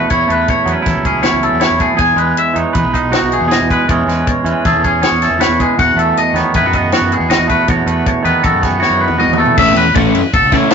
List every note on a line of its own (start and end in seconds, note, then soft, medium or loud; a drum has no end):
0.00 0.10 B3 medium
0.00 0.10 B4 medium
0.10 1.22 E2 medium
0.10 0.26 E2 medium
0.10 0.82 E4 medium
0.10 0.30 C#5 medium
0.10 kick medium
0.10 closed hi-hat medium
0.28 0.44 E2 medium
0.28 1.78 A3 medium
0.28 0.49 B4 medium
0.28 closed hi-hat medium
0.48 0.69 C#5 medium
0.48 kick medium
0.48 closed hi-hat medium
0.65 0.74 E2 medium
0.65 1.96 F#3 medium
0.65 0.73 B3 soft
0.65 closed hi-hat soft
0.69 0.88 B4 medium
0.73 1.04 C#4 soft
0.82 0.93 E3 medium
0.82 1.22 E4 soft
0.82 closed hi-hat medium
0.86 1.06 A4 medium
0.86 kick medium
0.86 snare soft
0.96 1.26 C#2 medium
1.05 1.97 C#4 medium
1.05 1.24 G#4 medium
1.05 kick medium
1.05 closed hi-hat soft
1.22 1.59 E2 medium
1.22 1.59 E4 soft
1.22 1.42 C#5 medium
1.22 snare medium
1.22 closed hi-hat medium
1.33 1.48 C#2 medium
1.43 1.62 A4 medium
1.43 closed hi-hat medium
1.52 1.67 E2 medium
1.59 1.95 E2 medium
1.59 1.96 E4 soft
1.59 1.81 C#5 medium
1.59 snare medium
1.59 closed hi-hat medium
1.70 1.86 E2 medium
1.80 1.97 A3 soft
1.80 2.00 G#4 medium
1.80 kick medium
1.80 closed hi-hat medium
1.96 3.46 E2 medium
1.96 2.14 E2 medium
1.96 2.73 G#4 medium
1.96 2.18 G#5 medium
1.96 kick medium
1.96 closed hi-hat medium
2.16 2.32 E2 medium
2.16 3.69 G#3 soft
2.16 2.38 B4 medium
2.16 closed hi-hat medium
2.37 2.58 E5 medium
2.37 closed hi-hat medium
2.54 2.63 E2 medium
2.54 3.85 E3 medium
2.54 2.92 D#4 soft
2.54 closed hi-hat medium
2.58 2.77 C#5 medium
2.73 2.83 E3 medium
2.73 3.11 B4 medium
2.73 2.95 B4 medium
2.73 kick medium
2.73 closed hi-hat medium
2.83 3.14 B1 medium
2.93 3.86 D#4 medium
2.93 3.14 D#5 medium
2.93 kick medium
2.93 closed hi-hat medium
3.11 3.86 B2 medium
3.11 3.48 F#4 medium
3.11 3.32 F#4 medium
3.11 snare loud
3.11 closed hi-hat medium
3.22 3.37 B1 medium
3.32 3.52 G#4 medium
3.32 closed hi-hat medium
3.41 3.56 E2 medium
3.48 3.86 E2 medium
3.48 3.85 G#4 medium
3.48 closed hi-hat medium
3.52 3.70 D#5 medium
3.52 snare loud
3.60 3.76 E2 medium
3.70 3.87 G#3 medium
3.70 3.89 B4 medium
3.70 kick medium
3.70 closed hi-hat medium
3.88 5.01 E2 medium
3.88 4.04 E2 medium
3.88 4.43 E3 medium
3.88 4.07 G#3 soft
3.88 4.43 C#4 medium
3.88 4.64 G#4 medium
3.88 4.09 C#5 medium
3.88 kick medium
3.88 closed hi-hat medium
4.07 4.22 E2 medium
4.07 5.60 G#3 medium
4.07 4.27 B4 medium
4.07 snare soft
4.07 closed hi-hat soft
4.27 4.47 C#5 medium
4.27 kick medium
4.27 closed hi-hat medium
4.44 4.52 E2 medium
4.44 5.76 E3 medium
4.44 4.83 C#4 soft
4.44 4.66 B4 medium
4.44 closed hi-hat medium
4.65 4.72 E3 medium
4.65 5.01 G#4 medium
4.65 4.84 A4 medium
4.65 kick medium
4.65 snare soft
4.65 closed hi-hat medium
4.74 5.04 E2 medium
4.84 5.77 C#4 medium
4.84 5.03 G#4 medium
4.84 kick medium
4.84 closed hi-hat medium
5.02 5.38 E2 medium
5.02 5.40 G#4 soft
5.02 5.22 C#5 medium
5.02 snare medium
5.02 closed hi-hat medium
5.11 5.27 E2 medium
5.22 5.41 A4 medium
5.22 snare soft
5.22 closed hi-hat medium
5.30 5.46 E2 medium
5.39 5.76 E2 medium
5.39 5.76 B4 medium
5.39 5.60 C#5 medium
5.39 snare loud
5.39 closed hi-hat medium
5.48 5.64 E2 medium
5.60 5.77 G#3 soft
5.60 5.79 G#4 medium
5.60 kick medium
5.60 closed hi-hat medium
5.78 6.92 E2 medium
5.78 5.94 E2 medium
5.78 6.56 F#4 soft
5.78 5.98 F#5 medium
5.78 kick loud
5.78 closed hi-hat medium
5.95 6.11 E2 medium
5.95 7.47 A3 medium
5.95 6.17 A4 medium
5.95 closed hi-hat medium
6.17 6.37 D#5 medium
6.17 closed hi-hat medium
6.33 6.42 E2 medium
6.33 7.66 D#3 medium
6.33 6.77 B3 medium
6.33 6.55 C#5 medium
6.33 snare soft
6.33 closed hi-hat medium
6.54 6.61 E3 medium
6.54 6.66 E4 medium
6.54 6.74 B4 medium
6.54 kick medium
6.54 closed hi-hat medium
6.61 6.92 F#2 medium
6.66 6.92 F#4 soft
6.73 6.93 D#5 medium
6.73 kick medium
6.73 closed hi-hat medium
6.77 8.23 B3 medium
6.92 7.28 E2 medium
6.92 7.29 F#4 medium
6.92 7.13 F#4 medium
6.92 snare medium
6.92 closed hi-hat medium
7.01 7.16 F#2 medium
7.12 7.31 G#4 medium
7.12 closed hi-hat medium
7.20 7.35 E2 medium
7.29 7.67 E2 medium
7.29 7.66 F#4 medium
7.29 7.49 D#5 medium
7.29 snare loud
7.29 closed hi-hat medium
7.38 7.54 E2 medium
7.47 7.86 A3 medium
7.47 7.68 B4 medium
7.47 kick medium
7.47 closed hi-hat medium
7.68 8.78 E2 medium
7.68 7.84 E2 medium
7.68 8.42 F#4 medium
7.68 7.87 C#5 medium
7.68 kick loud
7.68 closed hi-hat medium
7.86 8.02 E2 medium
7.86 9.38 A3 medium
7.86 8.06 B4 medium
7.86 closed hi-hat medium
8.06 8.24 C#5 medium
8.06 kick medium
8.06 closed hi-hat medium
8.23 8.32 E2 medium
8.23 9.54 D#3 medium
8.23 8.61 B3 medium
8.23 8.44 B4 medium
8.23 closed hi-hat medium
8.43 8.51 E3 medium
8.43 8.78 F#4 medium
8.43 8.63 A4 medium
8.43 kick medium
8.43 closed hi-hat medium
8.52 8.83 F#2 medium
8.62 9.58 B3 medium
8.62 8.82 G#4 medium
8.62 kick medium
8.62 snare soft
8.62 closed hi-hat medium
8.79 9.16 E2 medium
8.79 9.17 F#4 medium
8.79 9.01 C#5 medium
8.79 snare medium
8.90 9.06 F#2 medium
9.01 9.19 B4 medium
9.08 9.25 E2 medium
9.08 high tom medium
9.18 9.57 E2 medium
9.18 9.55 F#4 medium
9.18 9.39 D#5 medium
9.18 mid tom medium
9.28 9.43 E2 medium
9.33 mid tom medium
9.38 9.56 A3 medium
9.38 9.57 A4 medium
9.46 floor tom medium
9.57 9.73 A1 medium
9.57 9.83 E3 medium
9.57 9.83 A3 medium
9.57 9.83 C#4 medium
9.57 9.83 E4 medium
9.57 9.77 E5 medium
9.57 kick loud
9.57 crash loud
9.76 9.91 E2 loud
9.76 9.95 B4 medium
9.76 ride medium
9.94 10.10 A1 medium
9.94 10.19 E3 medium
9.94 10.20 A3 medium
9.94 10.20 C#4 medium
9.94 10.20 E4 loud
9.94 10.15 C#5 medium
9.94 kick loud
9.94 ride loud
10.14 10.22 F#2 medium
10.14 10.33 B4 medium
10.14 ride medium
10.34 10.41 G#1 medium
10.34 10.53 A4 medium
10.34 kick loud
10.34 ride medium
10.42 10.57 C#2 medium
10.52 10.74 E3 medium
10.52 10.74 A3 medium
10.52 10.74 C#4 medium
10.52 10.74 E4 medium
10.52 10.70 C#5 medium
10.52 kick medium
10.52 snare soft
10.52 ride medium
10.70 10.74 A4 medium
10.70 snare loud
10.70 ride loud